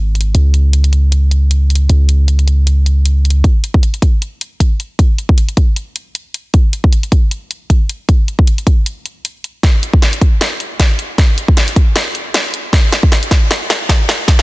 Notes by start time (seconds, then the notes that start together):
Already playing: G#1
0.15 closed hi-hat
0.21 closed hi-hat
0.35 C#2, closed hi-hat
0.54 closed hi-hat
0.73 closed hi-hat
0.84 closed hi-hat
0.93 closed hi-hat
1.12 closed hi-hat
1.31 closed hi-hat
1.51 closed hi-hat
1.70 closed hi-hat
1.75 closed hi-hat
1.89 C#2, closed hi-hat
2.09 closed hi-hat
2.28 closed hi-hat
2.39 closed hi-hat
2.48 closed hi-hat
2.67 closed hi-hat
2.86 closed hi-hat
3.06 closed hi-hat
3.25 closed hi-hat
3.30 closed hi-hat
3.44 kick, closed hi-hat
3.64 closed hi-hat
3.74 kick
3.83 closed hi-hat
3.94 closed hi-hat
4.02 kick, closed hi-hat
4.22 closed hi-hat
4.41 closed hi-hat
4.60 kick, closed hi-hat
4.80 closed hi-hat
4.99 kick, closed hi-hat
5.18 closed hi-hat
5.29 kick
5.38 closed hi-hat
5.49 closed hi-hat
5.57 kick, closed hi-hat
5.76 closed hi-hat
5.96 closed hi-hat
6.15 closed hi-hat
6.34 closed hi-hat
6.54 kick, closed hi-hat
6.73 closed hi-hat
6.84 kick
6.92 closed hi-hat
7.03 closed hi-hat
7.12 kick, closed hi-hat
7.31 closed hi-hat
7.51 closed hi-hat
7.70 kick, closed hi-hat
7.89 closed hi-hat
8.09 kick, closed hi-hat
8.28 closed hi-hat
8.39 kick
8.47 closed hi-hat
8.58 closed hi-hat
8.67 kick, closed hi-hat
8.86 closed hi-hat
9.06 closed hi-hat
9.25 closed hi-hat
9.44 closed hi-hat
9.63 kick, snare, closed hi-hat
9.83 closed hi-hat
9.94 kick
10.02 snare, closed hi-hat
10.13 closed hi-hat
10.21 kick, closed hi-hat
10.41 snare, closed hi-hat
10.60 closed hi-hat
10.80 kick, snare, closed hi-hat
10.99 closed hi-hat
11.18 kick, snare, closed hi-hat
11.38 closed hi-hat
11.48 kick
11.57 snare, closed hi-hat
11.68 closed hi-hat
11.76 kick, closed hi-hat
11.96 snare, closed hi-hat
12.15 closed hi-hat
12.34 snare, closed hi-hat
12.54 closed hi-hat
12.73 kick, snare, closed hi-hat
12.92 snare, closed hi-hat
13.03 kick
13.12 snare, closed hi-hat
13.23 closed hi-hat
13.31 kick, snare, closed hi-hat
13.51 snare, closed hi-hat
13.70 snare, closed hi-hat
13.89 kick, snare, closed hi-hat
14.09 snare, closed hi-hat
14.28 kick, snare, closed hi-hat
14.39 snare